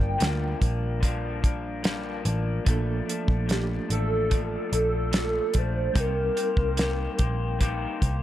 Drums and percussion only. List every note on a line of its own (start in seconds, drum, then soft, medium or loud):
0.20 snare loud
0.20 closed hi-hat medium
0.62 kick medium
0.62 closed hi-hat medium
1.03 kick medium
1.03 closed hi-hat medium
1.44 kick medium
1.44 closed hi-hat medium
1.84 snare loud
1.84 closed hi-hat medium
2.25 closed hi-hat medium
2.66 kick loud
2.66 closed hi-hat loud
3.09 closed hi-hat medium
3.28 kick loud
3.49 snare loud
3.49 closed hi-hat medium
3.90 closed hi-hat medium
4.31 kick medium
4.31 closed hi-hat medium
4.73 closed hi-hat medium
5.13 snare loud
5.13 closed hi-hat medium
5.54 kick medium
5.54 closed hi-hat medium
5.96 kick loud
5.96 closed hi-hat loud
6.37 closed hi-hat medium
6.57 kick loud
6.77 snare loud
6.77 closed hi-hat medium
7.19 kick medium
7.19 closed hi-hat medium
7.61 kick medium
7.61 closed hi-hat medium
8.02 kick medium
8.02 closed hi-hat medium